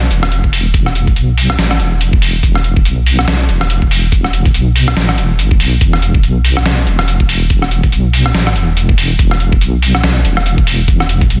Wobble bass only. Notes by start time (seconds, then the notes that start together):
Already playing: B1
0.11 E1
1.16 B1
1.59 A1
1.80 E1
2.43 E1
2.85 B1
3.28 B1
3.49 E1
4.55 B1
4.97 A1
5.18 E1
5.39 G1
5.60 B1
5.81 E1
6.24 B1
6.66 B1
6.87 E1
7.93 B1
8.35 A1
8.56 E1
9.19 E1
9.61 B1
10.04 B1
10.25 E1
11.30 B1